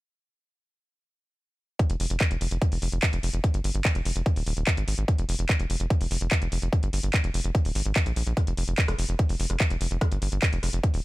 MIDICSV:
0, 0, Header, 1, 3, 480
1, 0, Start_track
1, 0, Key_signature, -4, "minor"
1, 0, Tempo, 410959
1, 2095, Time_signature, 4, 2, 24, 8
1, 12903, End_track
2, 0, Start_track
2, 0, Title_t, "Analog synth bass"
2, 0, Program_c, 0, 38
2, 2215, Note_on_c, 0, 29, 88
2, 2293, Note_off_c, 0, 29, 0
2, 2335, Note_on_c, 0, 29, 98
2, 2413, Note_off_c, 0, 29, 0
2, 2455, Note_on_c, 0, 29, 90
2, 2533, Note_off_c, 0, 29, 0
2, 2695, Note_on_c, 0, 29, 84
2, 2773, Note_off_c, 0, 29, 0
2, 2815, Note_on_c, 0, 29, 99
2, 2893, Note_off_c, 0, 29, 0
2, 2935, Note_on_c, 0, 29, 91
2, 3013, Note_off_c, 0, 29, 0
2, 3175, Note_on_c, 0, 29, 86
2, 3253, Note_off_c, 0, 29, 0
2, 3295, Note_on_c, 0, 29, 100
2, 3373, Note_off_c, 0, 29, 0
2, 3415, Note_on_c, 0, 29, 91
2, 3493, Note_off_c, 0, 29, 0
2, 3655, Note_on_c, 0, 29, 88
2, 3733, Note_off_c, 0, 29, 0
2, 3775, Note_on_c, 0, 29, 103
2, 3853, Note_off_c, 0, 29, 0
2, 3895, Note_on_c, 0, 29, 92
2, 3973, Note_off_c, 0, 29, 0
2, 4135, Note_on_c, 0, 31, 91
2, 4213, Note_off_c, 0, 31, 0
2, 4255, Note_on_c, 0, 31, 100
2, 4333, Note_off_c, 0, 31, 0
2, 4375, Note_on_c, 0, 31, 91
2, 4453, Note_off_c, 0, 31, 0
2, 4615, Note_on_c, 0, 29, 87
2, 4692, Note_off_c, 0, 29, 0
2, 4735, Note_on_c, 0, 29, 98
2, 4813, Note_off_c, 0, 29, 0
2, 4855, Note_on_c, 0, 29, 93
2, 4933, Note_off_c, 0, 29, 0
2, 5095, Note_on_c, 0, 27, 88
2, 5173, Note_off_c, 0, 27, 0
2, 5215, Note_on_c, 0, 27, 98
2, 5293, Note_off_c, 0, 27, 0
2, 5335, Note_on_c, 0, 27, 92
2, 5413, Note_off_c, 0, 27, 0
2, 5575, Note_on_c, 0, 32, 84
2, 5653, Note_off_c, 0, 32, 0
2, 5695, Note_on_c, 0, 32, 97
2, 5773, Note_off_c, 0, 32, 0
2, 5815, Note_on_c, 0, 32, 95
2, 5893, Note_off_c, 0, 32, 0
2, 6055, Note_on_c, 0, 29, 89
2, 6133, Note_off_c, 0, 29, 0
2, 6175, Note_on_c, 0, 29, 101
2, 6253, Note_off_c, 0, 29, 0
2, 6295, Note_on_c, 0, 29, 89
2, 6373, Note_off_c, 0, 29, 0
2, 6535, Note_on_c, 0, 29, 86
2, 6613, Note_off_c, 0, 29, 0
2, 6655, Note_on_c, 0, 29, 99
2, 6733, Note_off_c, 0, 29, 0
2, 6775, Note_on_c, 0, 29, 91
2, 6852, Note_off_c, 0, 29, 0
2, 7015, Note_on_c, 0, 29, 85
2, 7093, Note_off_c, 0, 29, 0
2, 7135, Note_on_c, 0, 29, 97
2, 7213, Note_off_c, 0, 29, 0
2, 7256, Note_on_c, 0, 29, 93
2, 7333, Note_off_c, 0, 29, 0
2, 7496, Note_on_c, 0, 29, 86
2, 7573, Note_off_c, 0, 29, 0
2, 7616, Note_on_c, 0, 29, 99
2, 7693, Note_off_c, 0, 29, 0
2, 7736, Note_on_c, 0, 29, 94
2, 7813, Note_off_c, 0, 29, 0
2, 7976, Note_on_c, 0, 31, 90
2, 8053, Note_off_c, 0, 31, 0
2, 8095, Note_on_c, 0, 31, 100
2, 8173, Note_off_c, 0, 31, 0
2, 8215, Note_on_c, 0, 31, 89
2, 8293, Note_off_c, 0, 31, 0
2, 8455, Note_on_c, 0, 29, 85
2, 8533, Note_off_c, 0, 29, 0
2, 8576, Note_on_c, 0, 29, 101
2, 8653, Note_off_c, 0, 29, 0
2, 8696, Note_on_c, 0, 29, 92
2, 8773, Note_off_c, 0, 29, 0
2, 8936, Note_on_c, 0, 27, 87
2, 9013, Note_off_c, 0, 27, 0
2, 9056, Note_on_c, 0, 32, 101
2, 9133, Note_off_c, 0, 32, 0
2, 9176, Note_on_c, 0, 32, 94
2, 9253, Note_off_c, 0, 32, 0
2, 9415, Note_on_c, 0, 34, 85
2, 9493, Note_off_c, 0, 34, 0
2, 9535, Note_on_c, 0, 34, 99
2, 9613, Note_off_c, 0, 34, 0
2, 9656, Note_on_c, 0, 34, 96
2, 9733, Note_off_c, 0, 34, 0
2, 9895, Note_on_c, 0, 29, 88
2, 9973, Note_off_c, 0, 29, 0
2, 10015, Note_on_c, 0, 29, 101
2, 10093, Note_off_c, 0, 29, 0
2, 10135, Note_on_c, 0, 29, 88
2, 10213, Note_off_c, 0, 29, 0
2, 10375, Note_on_c, 0, 29, 85
2, 10453, Note_off_c, 0, 29, 0
2, 10495, Note_on_c, 0, 29, 101
2, 10573, Note_off_c, 0, 29, 0
2, 10615, Note_on_c, 0, 29, 95
2, 10693, Note_off_c, 0, 29, 0
2, 10855, Note_on_c, 0, 29, 87
2, 10933, Note_off_c, 0, 29, 0
2, 10975, Note_on_c, 0, 29, 96
2, 11053, Note_off_c, 0, 29, 0
2, 11095, Note_on_c, 0, 29, 95
2, 11173, Note_off_c, 0, 29, 0
2, 11335, Note_on_c, 0, 29, 85
2, 11413, Note_off_c, 0, 29, 0
2, 11455, Note_on_c, 0, 29, 101
2, 11533, Note_off_c, 0, 29, 0
2, 11575, Note_on_c, 0, 29, 94
2, 11653, Note_off_c, 0, 29, 0
2, 11815, Note_on_c, 0, 31, 88
2, 11893, Note_off_c, 0, 31, 0
2, 11935, Note_on_c, 0, 31, 100
2, 12013, Note_off_c, 0, 31, 0
2, 12055, Note_on_c, 0, 31, 92
2, 12133, Note_off_c, 0, 31, 0
2, 12295, Note_on_c, 0, 29, 84
2, 12373, Note_off_c, 0, 29, 0
2, 12415, Note_on_c, 0, 29, 98
2, 12493, Note_off_c, 0, 29, 0
2, 12535, Note_on_c, 0, 29, 94
2, 12613, Note_off_c, 0, 29, 0
2, 12775, Note_on_c, 0, 27, 87
2, 12853, Note_off_c, 0, 27, 0
2, 12903, End_track
3, 0, Start_track
3, 0, Title_t, "Drums"
3, 2095, Note_on_c, 9, 36, 115
3, 2096, Note_on_c, 9, 42, 68
3, 2212, Note_off_c, 9, 36, 0
3, 2212, Note_off_c, 9, 42, 0
3, 2215, Note_on_c, 9, 42, 70
3, 2332, Note_off_c, 9, 42, 0
3, 2335, Note_on_c, 9, 46, 105
3, 2452, Note_off_c, 9, 46, 0
3, 2455, Note_on_c, 9, 42, 68
3, 2572, Note_off_c, 9, 42, 0
3, 2575, Note_on_c, 9, 36, 126
3, 2575, Note_on_c, 9, 39, 125
3, 2575, Note_on_c, 9, 42, 71
3, 2692, Note_off_c, 9, 36, 0
3, 2692, Note_off_c, 9, 39, 0
3, 2692, Note_off_c, 9, 42, 0
3, 2695, Note_on_c, 9, 42, 67
3, 2812, Note_off_c, 9, 42, 0
3, 2815, Note_on_c, 9, 46, 107
3, 2932, Note_off_c, 9, 46, 0
3, 2935, Note_on_c, 9, 42, 70
3, 3052, Note_off_c, 9, 42, 0
3, 3055, Note_on_c, 9, 36, 120
3, 3055, Note_on_c, 9, 42, 70
3, 3172, Note_off_c, 9, 36, 0
3, 3172, Note_off_c, 9, 42, 0
3, 3175, Note_on_c, 9, 46, 61
3, 3292, Note_off_c, 9, 46, 0
3, 3295, Note_on_c, 9, 46, 108
3, 3412, Note_off_c, 9, 46, 0
3, 3415, Note_on_c, 9, 42, 68
3, 3532, Note_off_c, 9, 42, 0
3, 3535, Note_on_c, 9, 36, 121
3, 3536, Note_on_c, 9, 39, 126
3, 3536, Note_on_c, 9, 42, 67
3, 3652, Note_off_c, 9, 36, 0
3, 3652, Note_off_c, 9, 39, 0
3, 3652, Note_off_c, 9, 42, 0
3, 3655, Note_on_c, 9, 42, 72
3, 3772, Note_off_c, 9, 42, 0
3, 3775, Note_on_c, 9, 46, 103
3, 3892, Note_off_c, 9, 46, 0
3, 3895, Note_on_c, 9, 42, 66
3, 4012, Note_off_c, 9, 42, 0
3, 4015, Note_on_c, 9, 36, 119
3, 4015, Note_on_c, 9, 42, 66
3, 4132, Note_off_c, 9, 36, 0
3, 4132, Note_off_c, 9, 42, 0
3, 4135, Note_on_c, 9, 42, 71
3, 4252, Note_off_c, 9, 42, 0
3, 4255, Note_on_c, 9, 46, 111
3, 4372, Note_off_c, 9, 46, 0
3, 4375, Note_on_c, 9, 42, 66
3, 4492, Note_off_c, 9, 42, 0
3, 4495, Note_on_c, 9, 36, 127
3, 4495, Note_on_c, 9, 39, 127
3, 4495, Note_on_c, 9, 42, 70
3, 4612, Note_off_c, 9, 36, 0
3, 4612, Note_off_c, 9, 39, 0
3, 4612, Note_off_c, 9, 42, 0
3, 4615, Note_on_c, 9, 42, 67
3, 4732, Note_off_c, 9, 42, 0
3, 4735, Note_on_c, 9, 46, 105
3, 4852, Note_off_c, 9, 46, 0
3, 4855, Note_on_c, 9, 42, 69
3, 4972, Note_off_c, 9, 42, 0
3, 4975, Note_on_c, 9, 36, 124
3, 4975, Note_on_c, 9, 42, 63
3, 5092, Note_off_c, 9, 36, 0
3, 5092, Note_off_c, 9, 42, 0
3, 5095, Note_on_c, 9, 46, 62
3, 5212, Note_off_c, 9, 46, 0
3, 5215, Note_on_c, 9, 46, 108
3, 5332, Note_off_c, 9, 46, 0
3, 5335, Note_on_c, 9, 42, 65
3, 5452, Note_off_c, 9, 42, 0
3, 5455, Note_on_c, 9, 36, 126
3, 5455, Note_on_c, 9, 39, 122
3, 5455, Note_on_c, 9, 42, 66
3, 5572, Note_off_c, 9, 36, 0
3, 5572, Note_off_c, 9, 39, 0
3, 5572, Note_off_c, 9, 42, 0
3, 5576, Note_on_c, 9, 42, 70
3, 5692, Note_off_c, 9, 42, 0
3, 5696, Note_on_c, 9, 46, 106
3, 5812, Note_off_c, 9, 46, 0
3, 5816, Note_on_c, 9, 42, 67
3, 5933, Note_off_c, 9, 42, 0
3, 5935, Note_on_c, 9, 36, 123
3, 5936, Note_on_c, 9, 42, 63
3, 6052, Note_off_c, 9, 36, 0
3, 6052, Note_off_c, 9, 42, 0
3, 6055, Note_on_c, 9, 42, 65
3, 6172, Note_off_c, 9, 42, 0
3, 6175, Note_on_c, 9, 46, 113
3, 6292, Note_off_c, 9, 46, 0
3, 6296, Note_on_c, 9, 42, 63
3, 6412, Note_off_c, 9, 42, 0
3, 6415, Note_on_c, 9, 36, 127
3, 6416, Note_on_c, 9, 39, 123
3, 6416, Note_on_c, 9, 42, 66
3, 6532, Note_off_c, 9, 36, 0
3, 6532, Note_off_c, 9, 39, 0
3, 6532, Note_off_c, 9, 42, 0
3, 6535, Note_on_c, 9, 42, 63
3, 6652, Note_off_c, 9, 42, 0
3, 6656, Note_on_c, 9, 46, 108
3, 6772, Note_off_c, 9, 46, 0
3, 6776, Note_on_c, 9, 42, 64
3, 6892, Note_off_c, 9, 42, 0
3, 6895, Note_on_c, 9, 36, 127
3, 6896, Note_on_c, 9, 42, 63
3, 7012, Note_off_c, 9, 36, 0
3, 7012, Note_off_c, 9, 42, 0
3, 7016, Note_on_c, 9, 46, 61
3, 7132, Note_off_c, 9, 46, 0
3, 7135, Note_on_c, 9, 46, 112
3, 7252, Note_off_c, 9, 46, 0
3, 7255, Note_on_c, 9, 42, 63
3, 7372, Note_off_c, 9, 42, 0
3, 7375, Note_on_c, 9, 36, 127
3, 7376, Note_on_c, 9, 39, 123
3, 7376, Note_on_c, 9, 42, 62
3, 7492, Note_off_c, 9, 36, 0
3, 7492, Note_off_c, 9, 39, 0
3, 7492, Note_off_c, 9, 42, 0
3, 7496, Note_on_c, 9, 42, 67
3, 7612, Note_off_c, 9, 42, 0
3, 7615, Note_on_c, 9, 46, 109
3, 7732, Note_off_c, 9, 46, 0
3, 7735, Note_on_c, 9, 42, 64
3, 7852, Note_off_c, 9, 42, 0
3, 7855, Note_on_c, 9, 36, 121
3, 7855, Note_on_c, 9, 42, 60
3, 7972, Note_off_c, 9, 36, 0
3, 7972, Note_off_c, 9, 42, 0
3, 7976, Note_on_c, 9, 42, 64
3, 8092, Note_off_c, 9, 42, 0
3, 8096, Note_on_c, 9, 46, 108
3, 8212, Note_off_c, 9, 46, 0
3, 8215, Note_on_c, 9, 42, 65
3, 8332, Note_off_c, 9, 42, 0
3, 8335, Note_on_c, 9, 36, 127
3, 8336, Note_on_c, 9, 39, 120
3, 8336, Note_on_c, 9, 42, 65
3, 8452, Note_off_c, 9, 36, 0
3, 8452, Note_off_c, 9, 39, 0
3, 8452, Note_off_c, 9, 42, 0
3, 8456, Note_on_c, 9, 42, 64
3, 8572, Note_off_c, 9, 42, 0
3, 8576, Note_on_c, 9, 46, 110
3, 8693, Note_off_c, 9, 46, 0
3, 8696, Note_on_c, 9, 42, 64
3, 8813, Note_off_c, 9, 42, 0
3, 8815, Note_on_c, 9, 36, 127
3, 8816, Note_on_c, 9, 42, 60
3, 8932, Note_off_c, 9, 36, 0
3, 8933, Note_off_c, 9, 42, 0
3, 8936, Note_on_c, 9, 46, 62
3, 9053, Note_off_c, 9, 46, 0
3, 9056, Note_on_c, 9, 46, 110
3, 9172, Note_off_c, 9, 46, 0
3, 9175, Note_on_c, 9, 42, 62
3, 9292, Note_off_c, 9, 42, 0
3, 9295, Note_on_c, 9, 36, 124
3, 9296, Note_on_c, 9, 39, 116
3, 9296, Note_on_c, 9, 42, 62
3, 9412, Note_off_c, 9, 36, 0
3, 9412, Note_off_c, 9, 39, 0
3, 9412, Note_off_c, 9, 42, 0
3, 9415, Note_on_c, 9, 42, 64
3, 9532, Note_off_c, 9, 42, 0
3, 9535, Note_on_c, 9, 46, 103
3, 9652, Note_off_c, 9, 46, 0
3, 9655, Note_on_c, 9, 42, 61
3, 9772, Note_off_c, 9, 42, 0
3, 9775, Note_on_c, 9, 36, 115
3, 9775, Note_on_c, 9, 37, 41
3, 9775, Note_on_c, 9, 42, 64
3, 9892, Note_off_c, 9, 36, 0
3, 9892, Note_off_c, 9, 37, 0
3, 9892, Note_off_c, 9, 42, 0
3, 9895, Note_on_c, 9, 42, 63
3, 10012, Note_off_c, 9, 42, 0
3, 10015, Note_on_c, 9, 46, 107
3, 10132, Note_off_c, 9, 46, 0
3, 10135, Note_on_c, 9, 42, 62
3, 10252, Note_off_c, 9, 42, 0
3, 10255, Note_on_c, 9, 36, 124
3, 10255, Note_on_c, 9, 39, 118
3, 10255, Note_on_c, 9, 42, 66
3, 10372, Note_off_c, 9, 36, 0
3, 10372, Note_off_c, 9, 39, 0
3, 10372, Note_off_c, 9, 42, 0
3, 10375, Note_on_c, 9, 37, 87
3, 10375, Note_on_c, 9, 42, 65
3, 10492, Note_off_c, 9, 37, 0
3, 10492, Note_off_c, 9, 42, 0
3, 10495, Note_on_c, 9, 46, 109
3, 10612, Note_off_c, 9, 46, 0
3, 10615, Note_on_c, 9, 42, 65
3, 10731, Note_off_c, 9, 42, 0
3, 10735, Note_on_c, 9, 36, 120
3, 10735, Note_on_c, 9, 42, 61
3, 10852, Note_off_c, 9, 36, 0
3, 10852, Note_off_c, 9, 42, 0
3, 10855, Note_on_c, 9, 46, 60
3, 10972, Note_off_c, 9, 46, 0
3, 10975, Note_on_c, 9, 46, 106
3, 11092, Note_off_c, 9, 46, 0
3, 11095, Note_on_c, 9, 37, 41
3, 11095, Note_on_c, 9, 42, 64
3, 11212, Note_off_c, 9, 37, 0
3, 11212, Note_off_c, 9, 42, 0
3, 11215, Note_on_c, 9, 36, 121
3, 11215, Note_on_c, 9, 39, 110
3, 11215, Note_on_c, 9, 42, 65
3, 11332, Note_off_c, 9, 36, 0
3, 11332, Note_off_c, 9, 39, 0
3, 11332, Note_off_c, 9, 42, 0
3, 11335, Note_on_c, 9, 42, 67
3, 11452, Note_off_c, 9, 42, 0
3, 11455, Note_on_c, 9, 46, 103
3, 11572, Note_off_c, 9, 46, 0
3, 11575, Note_on_c, 9, 42, 61
3, 11692, Note_off_c, 9, 42, 0
3, 11695, Note_on_c, 9, 36, 115
3, 11695, Note_on_c, 9, 37, 82
3, 11695, Note_on_c, 9, 42, 63
3, 11812, Note_off_c, 9, 36, 0
3, 11812, Note_off_c, 9, 37, 0
3, 11812, Note_off_c, 9, 42, 0
3, 11815, Note_on_c, 9, 42, 67
3, 11932, Note_off_c, 9, 42, 0
3, 11935, Note_on_c, 9, 46, 99
3, 12052, Note_off_c, 9, 46, 0
3, 12055, Note_on_c, 9, 42, 63
3, 12172, Note_off_c, 9, 42, 0
3, 12175, Note_on_c, 9, 36, 117
3, 12175, Note_on_c, 9, 39, 118
3, 12175, Note_on_c, 9, 42, 68
3, 12292, Note_off_c, 9, 36, 0
3, 12292, Note_off_c, 9, 39, 0
3, 12292, Note_off_c, 9, 42, 0
3, 12295, Note_on_c, 9, 42, 65
3, 12412, Note_off_c, 9, 42, 0
3, 12415, Note_on_c, 9, 37, 41
3, 12415, Note_on_c, 9, 46, 102
3, 12532, Note_off_c, 9, 37, 0
3, 12532, Note_off_c, 9, 46, 0
3, 12535, Note_on_c, 9, 42, 66
3, 12652, Note_off_c, 9, 42, 0
3, 12655, Note_on_c, 9, 36, 119
3, 12655, Note_on_c, 9, 42, 66
3, 12772, Note_off_c, 9, 36, 0
3, 12772, Note_off_c, 9, 42, 0
3, 12775, Note_on_c, 9, 46, 60
3, 12892, Note_off_c, 9, 46, 0
3, 12903, End_track
0, 0, End_of_file